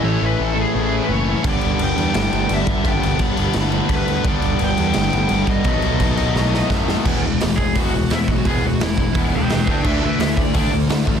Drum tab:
CC |--------|xxxxxxxx|xxxxxxxx|xxxxxxxx|
HH |--------|--------|--------|--------|
SD |--------|----o---|----o---|----o---|
BD |--------|o------o|o-o---o-|o------o|

CC |xxxx----|x-------|--------|x-------|
HH |--------|--o-o-o-|o-o-o-o-|--o-o-o-|
SD |----oooo|--o---o-|--o---o-|--o---o-|
BD |o-o---o-|o--oo--o|o--oo--o|o--oo--o|